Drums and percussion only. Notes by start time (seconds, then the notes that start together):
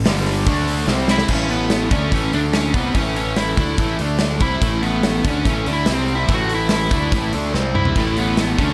0.06 snare, open hi-hat
0.26 open hi-hat
0.47 kick, open hi-hat
0.67 open hi-hat
0.88 snare
1.08 snare
1.18 snare
1.28 kick, crash
1.50 open hi-hat
1.70 snare, open hi-hat
1.91 kick, open hi-hat
2.12 kick, open hi-hat
2.33 open hi-hat
2.53 snare, open hi-hat
2.74 kick, open hi-hat
2.95 kick, open hi-hat
3.16 open hi-hat
3.36 snare, open hi-hat
3.57 kick, open hi-hat
3.78 kick, open hi-hat
3.99 open hi-hat
4.19 snare, open hi-hat
4.40 kick, open hi-hat
4.62 kick, open hi-hat
4.83 open hi-hat
5.03 snare, open hi-hat
5.25 kick, open hi-hat
5.45 kick, open hi-hat
5.66 open hi-hat
5.86 snare, open hi-hat
6.08 open hi-hat
6.29 kick, open hi-hat
6.49 open hi-hat
6.69 snare, open hi-hat
6.91 kick, open hi-hat
7.12 kick, open hi-hat
7.33 open hi-hat
7.54 snare
7.75 mid tom
7.85 floor tom
7.96 kick, open hi-hat
8.17 open hi-hat
8.37 snare, open hi-hat
8.59 kick, open hi-hat